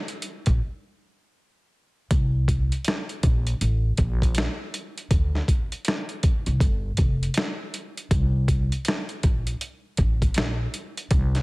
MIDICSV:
0, 0, Header, 1, 3, 480
1, 0, Start_track
1, 0, Tempo, 750000
1, 1349, Time_signature, 4, 2, 24, 8
1, 7311, End_track
2, 0, Start_track
2, 0, Title_t, "Upright bass"
2, 0, Program_c, 0, 32
2, 303, Note_on_c, 0, 34, 89
2, 369, Note_off_c, 0, 34, 0
2, 1349, Note_on_c, 0, 36, 91
2, 1715, Note_off_c, 0, 36, 0
2, 2070, Note_on_c, 0, 34, 90
2, 2252, Note_off_c, 0, 34, 0
2, 2311, Note_on_c, 0, 33, 92
2, 2493, Note_off_c, 0, 33, 0
2, 2551, Note_on_c, 0, 34, 86
2, 2850, Note_off_c, 0, 34, 0
2, 3270, Note_on_c, 0, 38, 97
2, 3453, Note_off_c, 0, 38, 0
2, 4138, Note_on_c, 0, 36, 81
2, 4206, Note_off_c, 0, 36, 0
2, 4226, Note_on_c, 0, 31, 88
2, 4410, Note_off_c, 0, 31, 0
2, 4470, Note_on_c, 0, 29, 81
2, 4653, Note_off_c, 0, 29, 0
2, 5190, Note_on_c, 0, 36, 101
2, 5556, Note_off_c, 0, 36, 0
2, 5912, Note_on_c, 0, 34, 87
2, 6094, Note_off_c, 0, 34, 0
2, 6393, Note_on_c, 0, 33, 82
2, 6575, Note_off_c, 0, 33, 0
2, 6632, Note_on_c, 0, 34, 83
2, 6814, Note_off_c, 0, 34, 0
2, 7110, Note_on_c, 0, 36, 108
2, 7293, Note_off_c, 0, 36, 0
2, 7311, End_track
3, 0, Start_track
3, 0, Title_t, "Drums"
3, 53, Note_on_c, 9, 42, 51
3, 117, Note_off_c, 9, 42, 0
3, 142, Note_on_c, 9, 42, 69
3, 206, Note_off_c, 9, 42, 0
3, 294, Note_on_c, 9, 42, 53
3, 300, Note_on_c, 9, 36, 80
3, 358, Note_off_c, 9, 42, 0
3, 364, Note_off_c, 9, 36, 0
3, 1349, Note_on_c, 9, 36, 111
3, 1349, Note_on_c, 9, 42, 87
3, 1413, Note_off_c, 9, 36, 0
3, 1413, Note_off_c, 9, 42, 0
3, 1588, Note_on_c, 9, 36, 78
3, 1591, Note_on_c, 9, 42, 71
3, 1652, Note_off_c, 9, 36, 0
3, 1655, Note_off_c, 9, 42, 0
3, 1741, Note_on_c, 9, 42, 48
3, 1805, Note_off_c, 9, 42, 0
3, 1821, Note_on_c, 9, 42, 85
3, 1844, Note_on_c, 9, 38, 97
3, 1885, Note_off_c, 9, 42, 0
3, 1908, Note_off_c, 9, 38, 0
3, 1980, Note_on_c, 9, 42, 36
3, 2044, Note_off_c, 9, 42, 0
3, 2068, Note_on_c, 9, 42, 71
3, 2070, Note_on_c, 9, 36, 93
3, 2132, Note_off_c, 9, 42, 0
3, 2134, Note_off_c, 9, 36, 0
3, 2218, Note_on_c, 9, 42, 49
3, 2282, Note_off_c, 9, 42, 0
3, 2311, Note_on_c, 9, 42, 84
3, 2375, Note_off_c, 9, 42, 0
3, 2543, Note_on_c, 9, 42, 63
3, 2549, Note_on_c, 9, 36, 86
3, 2607, Note_off_c, 9, 42, 0
3, 2613, Note_off_c, 9, 36, 0
3, 2701, Note_on_c, 9, 36, 81
3, 2708, Note_on_c, 9, 42, 48
3, 2765, Note_off_c, 9, 36, 0
3, 2772, Note_off_c, 9, 42, 0
3, 2781, Note_on_c, 9, 42, 88
3, 2803, Note_on_c, 9, 38, 105
3, 2845, Note_off_c, 9, 42, 0
3, 2867, Note_off_c, 9, 38, 0
3, 3033, Note_on_c, 9, 42, 73
3, 3097, Note_off_c, 9, 42, 0
3, 3184, Note_on_c, 9, 42, 49
3, 3248, Note_off_c, 9, 42, 0
3, 3268, Note_on_c, 9, 36, 120
3, 3268, Note_on_c, 9, 42, 83
3, 3332, Note_off_c, 9, 36, 0
3, 3332, Note_off_c, 9, 42, 0
3, 3425, Note_on_c, 9, 38, 32
3, 3489, Note_off_c, 9, 38, 0
3, 3508, Note_on_c, 9, 36, 79
3, 3511, Note_on_c, 9, 42, 70
3, 3572, Note_off_c, 9, 36, 0
3, 3575, Note_off_c, 9, 42, 0
3, 3661, Note_on_c, 9, 42, 44
3, 3725, Note_off_c, 9, 42, 0
3, 3742, Note_on_c, 9, 42, 83
3, 3764, Note_on_c, 9, 38, 104
3, 3806, Note_off_c, 9, 42, 0
3, 3828, Note_off_c, 9, 38, 0
3, 3897, Note_on_c, 9, 42, 35
3, 3961, Note_off_c, 9, 42, 0
3, 3987, Note_on_c, 9, 42, 72
3, 3990, Note_on_c, 9, 36, 93
3, 4051, Note_off_c, 9, 42, 0
3, 4054, Note_off_c, 9, 36, 0
3, 4136, Note_on_c, 9, 42, 51
3, 4200, Note_off_c, 9, 42, 0
3, 4227, Note_on_c, 9, 36, 96
3, 4230, Note_on_c, 9, 42, 86
3, 4291, Note_off_c, 9, 36, 0
3, 4294, Note_off_c, 9, 42, 0
3, 4461, Note_on_c, 9, 42, 64
3, 4469, Note_on_c, 9, 36, 88
3, 4525, Note_off_c, 9, 42, 0
3, 4533, Note_off_c, 9, 36, 0
3, 4626, Note_on_c, 9, 42, 47
3, 4690, Note_off_c, 9, 42, 0
3, 4698, Note_on_c, 9, 42, 82
3, 4720, Note_on_c, 9, 38, 108
3, 4762, Note_off_c, 9, 42, 0
3, 4784, Note_off_c, 9, 38, 0
3, 4952, Note_on_c, 9, 42, 72
3, 5016, Note_off_c, 9, 42, 0
3, 5104, Note_on_c, 9, 42, 50
3, 5168, Note_off_c, 9, 42, 0
3, 5190, Note_on_c, 9, 36, 110
3, 5191, Note_on_c, 9, 42, 86
3, 5254, Note_off_c, 9, 36, 0
3, 5255, Note_off_c, 9, 42, 0
3, 5428, Note_on_c, 9, 36, 77
3, 5430, Note_on_c, 9, 42, 72
3, 5492, Note_off_c, 9, 36, 0
3, 5494, Note_off_c, 9, 42, 0
3, 5582, Note_on_c, 9, 42, 45
3, 5646, Note_off_c, 9, 42, 0
3, 5663, Note_on_c, 9, 42, 87
3, 5686, Note_on_c, 9, 38, 105
3, 5727, Note_off_c, 9, 42, 0
3, 5750, Note_off_c, 9, 38, 0
3, 5817, Note_on_c, 9, 42, 34
3, 5881, Note_off_c, 9, 42, 0
3, 5909, Note_on_c, 9, 42, 68
3, 5911, Note_on_c, 9, 36, 90
3, 5973, Note_off_c, 9, 42, 0
3, 5975, Note_off_c, 9, 36, 0
3, 6059, Note_on_c, 9, 42, 54
3, 6123, Note_off_c, 9, 42, 0
3, 6151, Note_on_c, 9, 42, 86
3, 6215, Note_off_c, 9, 42, 0
3, 6383, Note_on_c, 9, 42, 67
3, 6390, Note_on_c, 9, 36, 91
3, 6447, Note_off_c, 9, 42, 0
3, 6454, Note_off_c, 9, 36, 0
3, 6540, Note_on_c, 9, 36, 84
3, 6542, Note_on_c, 9, 42, 47
3, 6604, Note_off_c, 9, 36, 0
3, 6606, Note_off_c, 9, 42, 0
3, 6620, Note_on_c, 9, 42, 83
3, 6642, Note_on_c, 9, 38, 105
3, 6684, Note_off_c, 9, 42, 0
3, 6706, Note_off_c, 9, 38, 0
3, 6872, Note_on_c, 9, 42, 66
3, 6936, Note_off_c, 9, 42, 0
3, 7024, Note_on_c, 9, 42, 55
3, 7088, Note_off_c, 9, 42, 0
3, 7108, Note_on_c, 9, 42, 91
3, 7109, Note_on_c, 9, 36, 116
3, 7172, Note_off_c, 9, 42, 0
3, 7173, Note_off_c, 9, 36, 0
3, 7263, Note_on_c, 9, 42, 35
3, 7265, Note_on_c, 9, 38, 33
3, 7311, Note_off_c, 9, 38, 0
3, 7311, Note_off_c, 9, 42, 0
3, 7311, End_track
0, 0, End_of_file